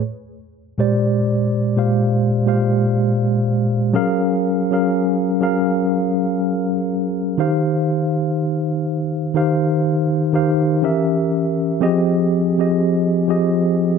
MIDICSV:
0, 0, Header, 1, 2, 480
1, 0, Start_track
1, 0, Tempo, 983607
1, 6, Time_signature, 4, 2, 24, 8
1, 6825, End_track
2, 0, Start_track
2, 0, Title_t, "Tine electric piano"
2, 0, Program_c, 0, 4
2, 0, Control_c, 0, 64, 127
2, 13, Control_c, 0, 64, 0
2, 108, Control_c, 0, 64, 127
2, 379, Note_on_c, 0, 46, 79
2, 383, Note_on_c, 0, 56, 79
2, 386, Note_on_c, 0, 67, 71
2, 389, Note_on_c, 0, 72, 76
2, 392, Note_on_c, 0, 74, 93
2, 677, Note_off_c, 0, 46, 0
2, 678, Note_off_c, 0, 56, 0
2, 680, Note_off_c, 0, 67, 0
2, 681, Note_off_c, 0, 72, 0
2, 683, Note_off_c, 0, 74, 0
2, 859, Note_on_c, 0, 46, 75
2, 863, Note_on_c, 0, 56, 68
2, 866, Note_on_c, 0, 67, 67
2, 869, Note_on_c, 0, 72, 67
2, 872, Note_on_c, 0, 77, 81
2, 1089, Note_off_c, 0, 46, 0
2, 1090, Note_off_c, 0, 56, 0
2, 1092, Note_off_c, 0, 67, 0
2, 1093, Note_off_c, 0, 72, 0
2, 1095, Note_off_c, 0, 77, 0
2, 1200, Note_on_c, 0, 46, 81
2, 1203, Note_on_c, 0, 56, 75
2, 1206, Note_on_c, 0, 67, 75
2, 1210, Note_on_c, 0, 72, 73
2, 1213, Note_on_c, 0, 77, 86
2, 1663, Note_off_c, 0, 46, 0
2, 1665, Note_off_c, 0, 56, 0
2, 1667, Note_off_c, 0, 67, 0
2, 1668, Note_off_c, 0, 72, 0
2, 1670, Note_off_c, 0, 77, 0
2, 1919, Note_on_c, 0, 54, 109
2, 1922, Note_on_c, 0, 61, 99
2, 1926, Note_on_c, 0, 68, 100
2, 1929, Note_on_c, 0, 70, 101
2, 1932, Note_on_c, 0, 77, 118
2, 1933, Control_c, 0, 64, 0
2, 2018, Control_c, 0, 64, 127
2, 2153, Note_off_c, 0, 54, 0
2, 2154, Note_off_c, 0, 61, 0
2, 2156, Note_off_c, 0, 68, 0
2, 2158, Note_off_c, 0, 70, 0
2, 2159, Note_off_c, 0, 77, 0
2, 2299, Note_on_c, 0, 54, 78
2, 2301, Note_on_c, 0, 61, 74
2, 2305, Note_on_c, 0, 68, 70
2, 2308, Note_on_c, 0, 70, 72
2, 2312, Note_on_c, 0, 77, 84
2, 2528, Note_off_c, 0, 54, 0
2, 2530, Note_off_c, 0, 61, 0
2, 2531, Note_off_c, 0, 68, 0
2, 2533, Note_off_c, 0, 70, 0
2, 2535, Note_off_c, 0, 77, 0
2, 2639, Note_on_c, 0, 54, 88
2, 2642, Note_on_c, 0, 61, 79
2, 2645, Note_on_c, 0, 68, 79
2, 2648, Note_on_c, 0, 70, 84
2, 2652, Note_on_c, 0, 77, 101
2, 3269, Note_off_c, 0, 54, 0
2, 3271, Note_off_c, 0, 61, 0
2, 3272, Note_off_c, 0, 68, 0
2, 3274, Note_off_c, 0, 70, 0
2, 3276, Note_off_c, 0, 77, 0
2, 3600, Note_on_c, 0, 51, 90
2, 3603, Note_on_c, 0, 63, 81
2, 3607, Note_on_c, 0, 67, 82
2, 3610, Note_on_c, 0, 72, 82
2, 3613, Control_c, 0, 64, 0
2, 3613, Note_on_c, 0, 77, 94
2, 3704, Control_c, 0, 64, 127
2, 4379, Note_off_c, 0, 51, 0
2, 4380, Note_off_c, 0, 63, 0
2, 4382, Note_off_c, 0, 67, 0
2, 4384, Note_off_c, 0, 72, 0
2, 4385, Note_off_c, 0, 77, 0
2, 4560, Note_on_c, 0, 51, 88
2, 4564, Note_on_c, 0, 63, 81
2, 4567, Note_on_c, 0, 67, 79
2, 4570, Note_on_c, 0, 72, 81
2, 4573, Note_on_c, 0, 77, 97
2, 4878, Note_off_c, 0, 51, 0
2, 4880, Note_off_c, 0, 63, 0
2, 4881, Note_off_c, 0, 67, 0
2, 4883, Note_off_c, 0, 72, 0
2, 4884, Note_off_c, 0, 77, 0
2, 5040, Note_on_c, 0, 51, 86
2, 5044, Note_on_c, 0, 63, 80
2, 5047, Note_on_c, 0, 67, 80
2, 5050, Note_on_c, 0, 72, 82
2, 5053, Note_on_c, 0, 77, 91
2, 5281, Note_off_c, 0, 67, 0
2, 5281, Note_on_c, 0, 52, 92
2, 5283, Note_off_c, 0, 51, 0
2, 5284, Note_on_c, 0, 61, 84
2, 5285, Note_off_c, 0, 63, 0
2, 5287, Note_on_c, 0, 67, 82
2, 5288, Note_off_c, 0, 72, 0
2, 5290, Note_off_c, 0, 77, 0
2, 5291, Note_on_c, 0, 70, 83
2, 5293, Control_c, 0, 64, 0
2, 5294, Note_on_c, 0, 76, 103
2, 5366, Control_c, 0, 64, 127
2, 5683, Note_off_c, 0, 52, 0
2, 5684, Note_off_c, 0, 61, 0
2, 5686, Note_off_c, 0, 67, 0
2, 5688, Note_off_c, 0, 70, 0
2, 5689, Note_off_c, 0, 76, 0
2, 5761, Note_on_c, 0, 53, 108
2, 5764, Note_on_c, 0, 60, 99
2, 5768, Note_on_c, 0, 67, 101
2, 5771, Note_on_c, 0, 68, 101
2, 5772, Control_c, 0, 64, 0
2, 5773, Note_on_c, 0, 75, 122
2, 5858, Control_c, 0, 64, 127
2, 5994, Note_off_c, 0, 53, 0
2, 5995, Note_off_c, 0, 60, 0
2, 5997, Note_off_c, 0, 67, 0
2, 5999, Note_off_c, 0, 68, 0
2, 6000, Note_off_c, 0, 75, 0
2, 6139, Note_on_c, 0, 53, 78
2, 6143, Note_on_c, 0, 60, 73
2, 6146, Note_on_c, 0, 67, 77
2, 6149, Note_on_c, 0, 68, 76
2, 6152, Note_on_c, 0, 75, 90
2, 6369, Note_off_c, 0, 53, 0
2, 6370, Note_off_c, 0, 60, 0
2, 6372, Note_off_c, 0, 67, 0
2, 6374, Note_off_c, 0, 68, 0
2, 6375, Note_off_c, 0, 75, 0
2, 6480, Note_on_c, 0, 53, 88
2, 6484, Note_on_c, 0, 60, 80
2, 6487, Note_on_c, 0, 67, 80
2, 6490, Note_on_c, 0, 68, 84
2, 6493, Note_on_c, 0, 75, 97
2, 6825, Note_off_c, 0, 53, 0
2, 6825, Note_off_c, 0, 60, 0
2, 6825, Note_off_c, 0, 67, 0
2, 6825, Note_off_c, 0, 68, 0
2, 6825, Note_off_c, 0, 75, 0
2, 6825, End_track
0, 0, End_of_file